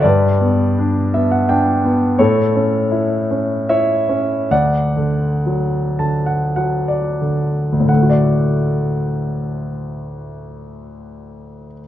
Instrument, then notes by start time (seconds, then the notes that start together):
grand piano
0.02 G2 B4 D5
0.41 B3
0.78 D4
1.14 B3 E5
1.31 F#5
1.49 D4 G5
1.85 B3
2.19 A2 A4 C#5
2.55 C#4
2.92 E4
3.31 C#4
3.69 E4 C#5 E5
4.09 C#4
4.51 D2 D5 F#5
4.97 D3
5.46 F#3
5.99 D3 A5
6.26 F#5
6.56 F#3 F#5
6.88 D5
7.21 D3
7.72 D2
7.80 A2
7.87 D3 F#5
7.94 A3
8.02 F#4
8.10 D5